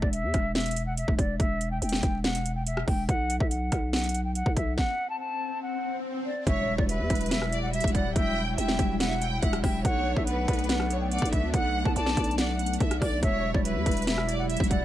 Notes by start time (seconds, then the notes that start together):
0.02 E1 D5, kick
0.13 E5, closed hi-hat
0.24 E2
0.34 E1, kick, cross-stick, closed hi-hat
0.55 E5, snare, closed hi-hat
0.60 closed hi-hat
0.66 closed hi-hat
0.71 closed hi-hat
0.76 closed hi-hat
0.87 F#5
0.97 E5, closed hi-hat
1.08 E1, kick
1.18 E1 D5, kick, closed hi-hat
1.39 E1 E5, kick, closed hi-hat
1.61 closed hi-hat
1.71 G5
1.82 E1 G5, closed hi-hat
1.89 snare, closed hi-hat
1.96 closed hi-hat
2.03 E1, kick, closed hi-hat
2.24 F#5, snare, closed hi-hat
2.35 closed hi-hat
2.46 closed hi-hat
2.56 G5
2.67 E5, closed hi-hat
2.77 cross-stick
2.88 E1 G5, kick, open hi-hat
3.09 B1 F#5, kick, closed hi-hat
3.30 closed hi-hat
3.40 B1 E5, kick
3.51 F#5, closed hi-hat
3.72 B1, kick, cross-stick, closed hi-hat
3.93 F#5, snare, closed hi-hat
3.99 closed hi-hat
4.04 closed hi-hat
4.09 closed hi-hat
4.14 closed hi-hat
4.25 G5
4.35 F#5, closed hi-hat
4.46 B1, kick
4.57 B1 E5, kick, closed hi-hat
4.78 F#5, kick, snare, swell
5.10 A5
5.20 A5
5.63 F#5
6.26 D5
6.47 E1 F#3 G3 E4 C#5 E5, kick, closed hi-hat, impact
6.78 E1 D5, kick
6.89 B4 E5, closed hi-hat
7.00 E2
7.10 E1, kick, closed hi-hat
7.15 closed hi-hat
7.21 closed hi-hat
7.26 closed hi-hat
7.31 E5, snare, closed hi-hat
7.42 cross-stick
7.53 D5, closed hi-hat
7.63 F#5
7.73 E5, closed hi-hat
7.81 E1, kick, closed hi-hat
7.88 closed hi-hat
7.95 D5 F#5, kick, closed hi-hat
8.05 D1
8.15 E1 E5 G5, kick, closed hi-hat
8.47 G5
8.58 E1 E5 G5, closed hi-hat
8.68 snare
8.79 E1, kick, closed hi-hat
9.00 E5 F#5, snare, closed hi-hat
9.22 G5, closed hi-hat
9.32 G5
9.43 E1 E5 F#5, kick, closed hi-hat
9.53 cross-stick, closed hi-hat
9.64 E1 E5 G5, kick, cross-stick, open hi-hat
9.84 B1 A3 B3 D4 C#5 F#5, kick, closed hi-hat
10.16 B1 E5, kick
10.27 B4 F#5, closed hi-hat
10.48 B1, kick, closed hi-hat
10.53 closed hi-hat
10.59 closed hi-hat
10.64 closed hi-hat
10.69 F#5, snare, closed hi-hat
10.80 cross-stick
10.91 C#5, closed hi-hat
11.01 G5
11.12 D5 F#5, closed hi-hat
11.19 B1, kick, closed hi-hat
11.26 closed hi-hat
11.32 E5, kick, closed hi-hat
11.43 D2
11.54 B1 F#5, kick, closed hi-hat
11.85 B1 A5, kick
11.96 B1 D5 A5, closed hi-hat
12.06 snare
12.17 B1, kick, closed hi-hat
12.24 closed hi-hat
12.31 closed hi-hat
12.38 D5 F#5, snare, closed hi-hat
12.59 F#5, closed hi-hat
12.66 closed hi-hat
12.73 closed hi-hat
12.80 B1 E5, kick, closed hi-hat
12.91 cross-stick, closed hi-hat
13.01 B1 D5, kick, cross-stick, open hi-hat
13.23 E1 F#3 G3 E4 C#5 E5, kick, closed hi-hat
13.54 E1 D5, kick
13.65 B4 E5, closed hi-hat
13.76 E2
13.86 E1, kick, closed hi-hat
13.91 closed hi-hat
13.97 closed hi-hat
14.02 closed hi-hat
14.07 E5, snare, closed hi-hat
14.18 cross-stick
14.29 D5, closed hi-hat
14.39 F#5
14.50 E5, closed hi-hat
14.57 E1, kick, closed hi-hat
14.64 closed hi-hat
14.71 D5 F#5, kick, closed hi-hat
14.81 D1